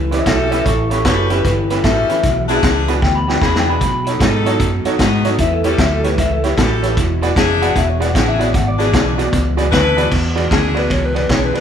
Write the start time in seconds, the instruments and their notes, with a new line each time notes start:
Already playing: fingered electric bass C#2
0.11 clean electric guitar A2 E3 C#5 E5, upright piano C#4 E4 G4 B4, snare, closed hi-hat
0.25 fingered electric bass B1, clean electric guitar A2 F#3 C#5, saxophone section C#4 G4 A4, kick, snare, closed hi-hat
0.29 clean electric guitar E5
0.51 clean electric guitar A2 E3 C#5 E5, upright piano C#4 E4 G4 B4, snare, closed hi-hat
0.64 fingered electric bass A1, clean electric guitar A2 E3 A4 C#5, kick, snare, closed hi-hat
0.90 clean electric guitar A2 E3 A4 C#5, upright piano C#4 E4 G4 B4, snare, closed hi-hat
1.05 fingered electric bass F#1, clean electric guitar A2 F#3 A4 C#5, saxophone section C#4 G4 B4, kick, snare, closed hi-hat
1.30 clean electric guitar A2 E3 G4 B4, upright piano C#4 E4 G4 B4, snare, closed hi-hat
1.45 fingered electric bass G1, clean electric guitar A2 E3 G4 B4, kick, snare, closed hi-hat
1.70 clean electric guitar A2 E3 G4 B4, upright piano C#4 E4 G4 B4, snare, closed hi-hat
1.83 fingered electric bass A1, clean electric guitar A2 F#3 E5, saxophone section C#4 G4 A4, kick, snare, closed hi-hat
2.09 clean electric guitar A2 E3, upright piano C#4 E4 G4 B4, snare, closed hi-hat
2.23 fingered electric bass B1, clean electric guitar E2 B2, kick, snare, closed hi-hat
2.49 clean electric guitar E2 B2, saxophone section D4 E4 G#4, upright piano D4 F#4 G#4 B4, snare, closed hi-hat
2.63 fingered electric bass C#2, clean electric guitar E2 C#3, kick, snare, closed hi-hat
2.88 clean electric guitar E2 B2, upright piano D4 F#4 G#4 B4, snare, closed hi-hat
3.02 fingered electric bass D2, clean electric guitar E2 B2 G5, kick, snare
3.15 clean electric guitar B5
3.27 clean electric guitar E2 B2 G5, upright piano D4 F#4 G#4 B4, snare
3.41 clean electric guitar E2 C#3 B5, fingered electric bass E2, saxophone section D4 E4 G#4, kick, snare
3.56 clean electric guitar G5, snare
3.67 clean electric guitar E2 B2 B5, upright piano D4 F#4 G#4 B4
3.80 clean electric guitar B2 F#3 B5, fingered electric bass B2, kick, snare, closed hi-hat
4.04 clean electric guitar B2 F#3, upright piano D#4 F#4 A4 C#5, snare, closed hi-hat
4.19 fingered electric bass G#2, clean electric guitar B2 G#3, saxophone section B3 D#4 A4, kick, snare, closed hi-hat
4.45 clean electric guitar B2 F#3, upright piano D#4 F#4 A4 C#5, snare, closed hi-hat
4.60 fingered electric bass F#2, clean electric guitar B2 F#3, kick, snare, closed hi-hat
4.84 clean electric guitar B2 F#3, upright piano D#4 F#4 A4 C#5, muted fingered electric bass stroke, snare, closed hi-hat
4.98 fingered electric bass G#2, clean electric guitar B2 G#3, saxophone section B3 D#4 F#4, kick, snare, closed hi-hat
5.24 clean electric guitar B2 F#3, upright piano D#4 F#4 A4 C#5, snare, closed hi-hat
5.38 fingered electric bass E2, clean electric guitar A2 E3 E5, kick, snare, closed hi-hat
5.54 clean electric guitar A4
5.64 clean electric guitar A2 E3 G4, saxophone section C#4 G4 A4, upright piano E4 G4 B4 C#5, snare, closed hi-hat
5.78 fingered electric bass D2, clean electric guitar A2 F#3 E5, kick, snare, closed hi-hat
5.92 clean electric guitar A4
6.04 clean electric guitar A2 E3 G4, upright piano E4 G4 B4 C#5, snare, closed hi-hat
6.18 fingered electric bass C#2, clean electric guitar A2 E3 E5, kick, snare, closed hi-hat
6.33 clean electric guitar A4
6.44 clean electric guitar A2 E3 G4, upright piano E4 G4 B4 C#5, snare, closed hi-hat
6.56 fingered electric bass A1, clean electric guitar A2 F#3 E4, saxophone section C#4 G4 A4, kick, snare, closed hi-hat
6.83 clean electric guitar A2 E3, upright piano E4 G4 B4 C#5, snare, closed hi-hat
6.97 fingered electric bass E1, clean electric guitar E2 B2, kick, snare, closed hi-hat
7.21 clean electric guitar E2 B2, upright piano F#4 G#4 B4 D5, snare, closed hi-hat
7.36 fingered electric bass F1, clean electric guitar E2 C#3, saxophone section D4 E4 G#4, kick, snare, closed hi-hat
7.61 clean electric guitar E2 B2 F#5, upright piano F#4 G#4 B4 D5, snare, closed hi-hat
7.75 fingered electric bass E1, clean electric guitar E2 B2 E5, kick, snare, closed hi-hat
7.89 clean electric guitar C#5
8.00 clean electric guitar E2 B2 F#5, upright piano F#4 G#4 B4 D5, snare, closed hi-hat
8.14 fingered electric bass A1, clean electric guitar E2 C#3 F#5, saxophone section D4 E4 G#4, kick, snare, closed hi-hat
8.29 clean electric guitar E5
8.39 clean electric guitar E2 B2 C#5, upright piano F#4 G#4 B4 D5, snare, closed hi-hat
8.53 fingered electric bass G#1, clean electric guitar E2 B2 F#5, kick, snare, closed hi-hat
8.68 clean electric guitar D5
8.78 clean electric guitar E2 B2, saxophone section D4 E4 G#4, upright piano F#4 G#4 B4 D5, snare, closed hi-hat
8.93 fingered electric bass B1, clean electric guitar E2 C#3, kick, snare, closed hi-hat
9.18 clean electric guitar E2 B2, upright piano F#4 G#4 B4 D5, snare, closed hi-hat
9.32 fingered electric bass C#2, clean electric guitar E2 B2, kick, snare, closed hi-hat
9.57 clean electric guitar E2 B2, upright piano F#4 G#4 B4 D5, snare, closed hi-hat
9.71 fingered electric bass D2, clean electric guitar E2 C#3, saxophone section D4 E4 B4, kick, snare, closed hi-hat
9.97 clean electric guitar E2 B2, upright piano F#4 G#4 B4 D5, snare, closed hi-hat
10.11 fingered electric bass E2, clean electric guitar E2 B2, kick, snare, crash
10.35 clean electric guitar E2 B2, upright piano F#4 G#4 B4 D5, snare, ride
10.51 fingered electric bass D2, clean electric guitar E2 C#3, saxophone section D4 E4 G#4, kick, snare, ride
10.74 clean electric guitar E2 B2, upright piano F#4 G#4 B4 D5, snare, ride
10.79 electric slide guitar B4
10.90 fingered electric bass C#2, clean electric guitar E2 B2, electric slide guitar C#5, kick, snare, ride
11.05 electric slide guitar B4
11.14 clean electric guitar E2 B2, upright piano F#4 G#4 B4 D5, electric slide guitar B4, snare, ride
11.29 fingered electric bass B1, clean electric guitar E2 C#3, saxophone section D4 E4 G#4, electric slide guitar C#5, kick, snare, ride
11.44 electric slide guitar B4
11.53 clean electric guitar E2 B2, upright piano F#4 G#4 B4 D5, snare, ride